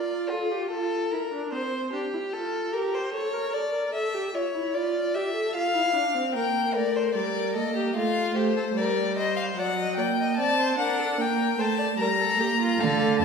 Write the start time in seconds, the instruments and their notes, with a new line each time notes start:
Already playing: viola F4, violin D5
0.29 violin F4, viola A4
0.51 viola G4
0.71 viola F4, violin A4
1.12 viola E4, violin A#4
1.32 viola D4
1.52 viola C4, violin C5
1.93 viola D4, violin G4
2.14 viola E4
2.33 viola F4, violin A4
2.73 viola G4, violin A#4
2.95 violin C5
3.14 viola A4, violin C#5
3.34 viola A#4
3.54 viola A4, violin D5
3.73 viola A#4
3.94 viola A4, violin E5
4.14 viola G4
4.34 viola F4, violin C#5
4.54 viola E4
4.74 viola F4, violin D5
5.15 viola G4, violin E5
5.35 viola A4
5.54 viola F4, violin F5
5.74 viola E4
5.94 viola D4
6.14 viola C4
6.34 viola A#3, violin A#4 G5
6.75 viola A3, violin A#4 D5
6.96 violin C5
7.15 viola G3, violin A#4 D5
7.55 viola A#3, violin A4 D#5
7.76 violin G4
7.96 viola A3, violin F4 F5
8.35 viola A3, violin G4 C5
8.57 violin A4
8.76 viola G3, violin A#4 D5
9.18 violin C5 D#5
9.36 violin F5
9.56 viola F#3, violin D5 F#5
9.78 violin D#5
9.96 viola A#3, violin D5 G5
10.20 violin D#5
10.37 viola C4, violin D5 A5
10.60 violin C5
10.78 viola D4, violin A#4 F#5
10.99 violin A4
11.18 viola A#3, violin A#4 G5
11.58 viola A3, violin C5 A5
11.78 violin D5
11.98 viola G3, violin A#4 A#5
12.20 violin A4
12.38 viola A#3, violin G4
12.60 violin F4
12.77 cello D3, viola A3, violin A4 F5
13.19 cello F2, violin D4 A5